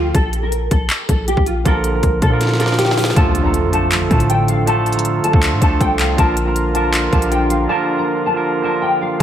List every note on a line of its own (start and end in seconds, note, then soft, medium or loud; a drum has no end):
0.00 0.12 D2 loud
0.00 0.17 D3 medium
0.00 0.16 F3 medium
0.00 0.17 A3 medium
0.00 0.13 F4 medium
0.00 0.16 F4 medium
0.00 0.17 A4 medium
0.14 0.69 A#1 loud
0.14 0.41 A4 loud
0.14 kick loud
0.14 closed hi-hat medium
0.33 closed hi-hat medium
0.43 0.69 A#4 medium
0.52 closed hi-hat medium
0.71 0.89 A#1 loud
0.71 1.07 A4 medium
0.71 kick loud
0.71 closed hi-hat medium
0.90 clap loud
0.90 closed hi-hat medium
1.09 1.36 A#1 loud
1.09 1.26 A4 medium
1.09 kick medium
1.09 closed hi-hat medium
1.28 1.45 G4 medium
1.28 closed hi-hat medium
1.37 1.64 A#1 loud
1.37 kick medium
1.46 1.64 F4 medium
1.46 closed hi-hat medium
1.64 2.02 A#1 loud
1.64 2.05 D3 loud
1.64 2.05 F3 medium
1.64 2.06 A#3 medium
1.64 2.06 F4 medium
1.64 1.92 A4 loud
1.64 2.07 A#4 loud
1.64 kick loud
1.64 closed hi-hat medium
1.84 closed hi-hat medium
1.94 2.21 A#4 medium
2.03 2.21 A#1 loud
2.03 kick loud
2.03 closed hi-hat medium
2.22 3.13 A#2 loud
2.22 2.58 A4 medium
2.22 kick loud
2.22 closed hi-hat medium
2.29 2.48 D3 medium
2.29 2.48 F3 medium
2.29 2.49 A#3 medium
2.29 2.49 F4 medium
2.29 2.50 A#4 medium
2.41 snare medium
2.41 closed hi-hat medium
2.47 snare medium
2.54 2.93 D3 medium
2.54 snare medium
2.58 2.94 F3 medium
2.58 2.94 A#3 medium
2.58 2.95 F4 medium
2.58 2.77 A4 medium
2.58 2.95 A#4 medium
2.58 snare medium
2.58 closed hi-hat medium
2.66 snare medium
2.72 snare medium
2.78 2.96 G4 medium
2.78 snare medium
2.78 closed hi-hat medium
2.85 snare medium
2.91 snare medium
2.97 3.15 F4 medium
2.97 snare medium
2.97 open hi-hat medium
3.04 snare loud
3.10 snare medium
3.15 3.65 D2 loud
3.15 3.33 D3 loud
3.15 6.15 D3 medium
3.15 3.33 F3 loud
3.15 3.34 A3 loud
3.15 9.23 D4 medium
3.15 9.23 F4 medium
3.15 3.34 F4 loud
3.15 6.15 A4 medium
3.15 3.35 A4 loud
3.15 3.43 A5 loud
3.15 kick loud
3.15 closed hi-hat medium
3.15 impact medium
3.35 closed hi-hat medium
3.43 3.61 D3 medium
3.43 3.62 F3 medium
3.43 3.62 A3 medium
3.43 3.63 F4 medium
3.43 3.63 A4 medium
3.43 3.71 A#5 medium
3.54 closed hi-hat medium
3.64 4.08 F2 loud
3.71 3.95 D3 medium
3.71 3.96 F3 medium
3.71 3.96 A3 medium
3.71 3.97 F4 medium
3.71 4.09 A5 loud
3.71 closed hi-hat medium
3.75 3.97 A4 medium
3.92 clap loud
3.92 closed hi-hat medium
4.09 5.20 A2 loud
4.09 4.44 D3 medium
4.09 4.45 F3 medium
4.09 4.45 A3 medium
4.09 4.46 F4 medium
4.09 4.46 A4 medium
4.09 4.28 A5 medium
4.09 kick medium
4.09 closed hi-hat soft
4.20 closed hi-hat medium
4.30 4.47 G5 medium
4.30 closed hi-hat medium
4.48 4.66 F5 medium
4.48 closed hi-hat medium
4.65 5.07 D3 loud
4.65 5.07 F3 medium
4.65 5.08 A3 loud
4.65 5.08 F4 medium
4.65 5.09 A4 loud
4.65 4.94 A5 loud
4.65 closed hi-hat medium
4.86 closed hi-hat soft
4.93 5.22 A#5 medium
4.93 closed hi-hat medium
4.99 closed hi-hat medium
5.05 closed hi-hat medium
5.24 5.59 A5 loud
5.24 closed hi-hat medium
5.32 5.54 D2 loud
5.32 5.50 D3 medium
5.32 5.50 F3 medium
5.32 5.51 A3 medium
5.32 5.51 F4 medium
5.32 5.52 A4 medium
5.32 kick loud
5.43 clap loud
5.43 closed hi-hat medium
5.52 5.61 A2 loud
5.60 5.80 D2 loud
5.60 5.96 D3 medium
5.60 5.96 F3 medium
5.60 5.96 A3 medium
5.60 5.97 F4 medium
5.60 5.98 A4 medium
5.60 5.79 A5 medium
5.60 kick medium
5.60 closed hi-hat medium
5.81 6.17 C2 loud
5.81 5.98 G5 medium
5.81 kick medium
5.81 closed hi-hat medium
5.99 6.17 F5 medium
5.99 clap loud
5.99 closed hi-hat medium
6.16 7.09 A#1 loud
6.16 6.34 D3 loud
6.16 6.35 F3 medium
6.16 6.35 A#3 medium
6.16 6.36 F4 medium
6.16 9.17 A#4 medium
6.16 6.36 A#4 loud
6.16 6.45 A5 loud
6.16 kick loud
6.16 closed hi-hat medium
6.37 closed hi-hat medium
6.44 6.63 D3 medium
6.44 6.63 F3 medium
6.44 6.64 A#3 medium
6.44 6.64 F4 medium
6.44 6.65 A#4 medium
6.44 6.73 A#5 medium
6.56 closed hi-hat medium
6.73 6.97 D3 medium
6.73 6.97 F3 medium
6.73 6.98 A#3 medium
6.73 6.98 F4 medium
6.73 6.99 A#4 medium
6.73 7.10 A5 medium
6.73 closed hi-hat medium
6.93 clap loud
6.93 closed hi-hat medium
7.10 7.67 A#1 loud
7.10 7.46 D3 medium
7.10 7.46 F3 medium
7.10 7.47 A#3 medium
7.10 7.47 F4 medium
7.10 7.48 G4 medium
7.10 7.30 A5 medium
7.10 kick medium
7.10 closed hi-hat soft
7.22 closed hi-hat medium
7.31 7.49 G5 medium
7.31 closed hi-hat medium
7.50 7.68 F5 medium
7.50 closed hi-hat medium
7.68 8.09 D3 loud
7.68 8.09 F3 loud
7.68 8.10 A#3 loud
7.68 8.10 F4 loud
7.68 8.11 A#4 loud
7.68 7.96 A5 loud
7.98 8.24 A#5 medium
8.26 8.61 A5 medium
8.33 8.51 D3 medium
8.33 8.52 F3 medium
8.33 8.52 A#3 medium
8.33 8.53 F4 medium
8.33 8.53 A#4 medium
8.61 8.97 D3 medium
8.61 8.97 F3 medium
8.61 8.98 A#3 medium
8.61 8.98 F4 medium
8.61 8.99 A#4 medium
8.61 8.81 A5 medium
8.82 8.99 G5 medium
9.01 9.19 F5 medium
9.18 9.23 D3 loud
9.18 9.23 F3 loud